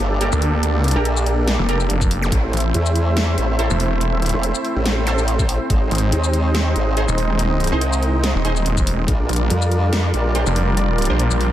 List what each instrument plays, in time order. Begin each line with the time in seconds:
Already playing: supersaw synth A#3 D4 G4 A4 D5, sub drop
0.00 wobble bass G1
0.21 synth stab G4 A4 A#4, closed hi-hat
0.32 detuned saw bass D2, shaker
0.42 open hi-hat
0.63 closed hi-hat
0.76 detuned saw bass C#2
0.84 closed hi-hat
0.88 closed hi-hat
0.91 closed hi-hat
0.96 wobble bass A#1, synth stab G4 A4 A#4
1.05 closed hi-hat
1.17 shaker
1.26 closed hi-hat
1.48 snare, closed hi-hat
1.59 detuned saw bass F1
1.69 synth stab G4 A4 A#4, closed hi-hat
1.80 shaker
1.90 detuned saw bass F1, closed hi-hat
2.01 kick, shaker
2.11 open hi-hat
2.22 zap
2.32 wobble bass A1, supersaw synth A3 C4 E4 C5 E5, kick, closed hi-hat
2.53 detuned saw bass A1, closed hi-hat
2.57 closed hi-hat
2.60 closed hi-hat
2.74 wobble bass E2, closed hi-hat
2.86 shaker
2.96 closed hi-hat
3.17 snare, closed hi-hat
3.38 wobble bass A1, closed hi-hat
3.59 synth stab E4 A4 C5, closed hi-hat
3.70 detuned saw bass E1, shaker
3.80 open hi-hat
4.01 closed hi-hat
4.14 detuned saw bass D#1
4.22 closed hi-hat
4.26 closed hi-hat
4.29 closed hi-hat
4.34 wobble bass E1
4.43 closed hi-hat
4.55 shaker
4.65 open hi-hat
4.76 wobble bass A1
4.86 snare, closed hi-hat
5.07 synth stab E4 A4 C5, closed hi-hat, zap
5.18 shaker
5.28 closed hi-hat
5.39 kick, shaker
5.49 open hi-hat
5.70 wobble bass G#1, supersaw synth G#3 D#4 D#5, kick, closed hi-hat
5.91 detuned saw bass G#1, closed hi-hat
5.95 closed hi-hat
5.98 closed hi-hat
6.12 wobble bass D#2, closed hi-hat
6.24 shaker
6.33 closed hi-hat
6.55 snare, closed hi-hat
6.76 wobble bass G#1, closed hi-hat
6.97 synth stab D#4 G#4 C5, closed hi-hat
7.08 detuned saw bass D#1, shaker
7.18 open hi-hat
7.39 closed hi-hat
7.60 closed hi-hat
7.64 closed hi-hat
7.67 closed hi-hat
7.72 wobble bass C2, synth stab D#4 G#4 C5
7.81 closed hi-hat
7.93 shaker
8.03 closed hi-hat
8.24 snare, closed hi-hat
8.35 detuned saw bass D#1
8.45 synth stab D#4 G#4 C5, closed hi-hat
8.56 shaker
8.66 detuned saw bass D#1, closed hi-hat
8.77 kick, shaker
8.87 open hi-hat
9.08 wobble bass A#1, supersaw synth G3 D4 F4 A#4 D5, kick, closed hi-hat
9.29 detuned saw bass A#1, closed hi-hat
9.33 closed hi-hat
9.36 closed hi-hat
9.50 wobble bass F2, closed hi-hat
9.62 shaker
9.71 closed hi-hat
9.93 snare, closed hi-hat
10.14 wobble bass A#1, closed hi-hat
10.35 synth stab D4 G4 C5, closed hi-hat
10.46 detuned saw bass F1, shaker
10.56 open hi-hat
10.77 closed hi-hat
10.98 closed hi-hat
11.02 closed hi-hat
11.05 closed hi-hat
11.10 detuned saw bass A#1, synth stab D4 G4 C5
11.19 closed hi-hat
11.31 detuned saw bass A#1, shaker
11.41 open hi-hat